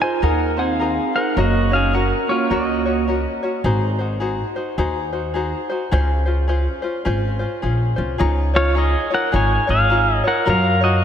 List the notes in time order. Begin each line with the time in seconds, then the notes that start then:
0.00 D#4 F4 G#4 C5 G#5
0.21 D#2 D#4 G#4 A#4 C5 F#5
0.57 C4 D#4 G#4 C5 F#5
0.61 G#4
0.70 F5
0.79 D#4 G#4 A#4 C5
1.13 D#4 G#4 C5 F#5
1.18 A#4
1.35 F#1 A#3 C#4 F#4 A#4 C#5 D#5
1.40 F#4
1.69 C#4 F#4 C#5
1.73 G#4 F5
1.92 C#4 F#4 A#4 C#5 F#5
1.96 A#4
2.27 A#3 C#4 F#4 C#5
2.31 F4
2.49 C#2 A#3 C#4 F#4 A#4 C#5 D#5
2.54 F#4
2.85 C#4 F#4 C#5
3.08 C#4 F#4 A#4 C#5
3.43 C#4 F#4 C#5
3.64 G#1 D#4 F#4 G#4 C5
3.99 D#4 F#4 C5
4.20 D#4 F#4 G#4 C5
4.56 D#4 F#4 C5
4.78 D#2 D#4 F#4 G#4 C5
5.13 D#4 F#4 C5
5.34 D#4 F#4 G#4 C5
5.69 D#4 F#4 C5
5.91 C#2 C#4 F4 G#4 C5
6.26 C#4 F4 C5
6.48 C#4 F4 G#4 C5
6.82 C#4 F4 C5
7.05 G#1 C#4 F4 G#4 C5
7.39 C#4 F4 C5
7.62 A#1 C#4 F4 G#4 C5
7.96 C2 C#4 F4 C5
8.18 C#2 D#4 F4 G#4 C#5
8.54 D#4 F4 C#5
8.75 D#4 F4 G#4 C#5 D#5
8.79 G#4
9.10 D#4 F4 A#4 C#5
9.14 F#5
9.32 G#1 D#4 F4 G#4 C#5
9.36 G#5
9.67 G#1 D#4 F4 G#4 C#5 F5
9.89 D#4 F4 G#4 C#5
10.15 D#5
10.24 D#4 F4 A#4 C#5
10.28 F#5
10.46 F#2 F4 F#4 A#4 C#5
10.50 F5
10.81 F4 F#4 C#5 D#5